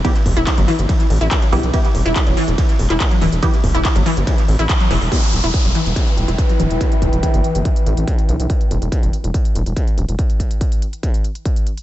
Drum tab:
RD |x---x---x---x---|x---x---x---x---|x---x---x---x---|----------------|
HH |xxoxxxoxxxoxxxox|xxoxxxoxxxoxxxox|xxoxxxoxxxoxxxoo|xxxxxxxxxxxxxxxx|
CP |----x-------x---|----x------xx---|----x-------x---|----------------|
BD |o-o-o---o---o---|o---o---o---o---|o-o-o---o---o---|o---o---o---o---|

RD |----------------|----------------|----------------|
HH |xxxxxxxxxxxxxxxx|xxxxxxxxxxxxxxxx|xxxxxxxxxxxxxxxx|
CP |----------------|----------------|----------------|
BD |o-o-o---o---o---|o---o---o---o---|o-o-o---o---o---|